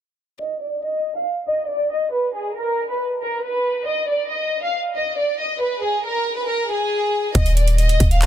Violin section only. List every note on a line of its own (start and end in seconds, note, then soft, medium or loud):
0.39 0.60 D#5 medium
0.61 0.82 D5 medium
0.83 1.13 D#5 medium
1.16 1.26 F5 medium
1.48 1.69 D#5 medium
1.69 1.90 D5 medium
1.91 2.12 D#5 medium
2.13 2.34 B4 medium
2.35 2.55 G#4 medium
2.56 2.87 A#4 medium
2.89 3.00 B4 medium
3.22 3.43 A#4 medium
3.44 3.85 B4 medium
3.87 4.08 D#5 medium
4.10 4.30 D5 medium
4.30 4.61 D#5 medium
4.63 4.73 F5 medium
4.96 5.16 D#5 medium
5.18 5.38 D5 medium
5.40 5.60 D#5 medium
5.61 5.82 B4 medium
5.83 6.03 G#4 medium
6.05 6.35 A#4 medium
6.37 6.47 B4 medium
6.48 6.68 A#4 medium
6.70 7.31 G#4 medium
7.35 7.56 D#5 medium
7.57 7.77 D5 medium
7.79 8.09 D#5 medium
8.11 8.21 F5 medium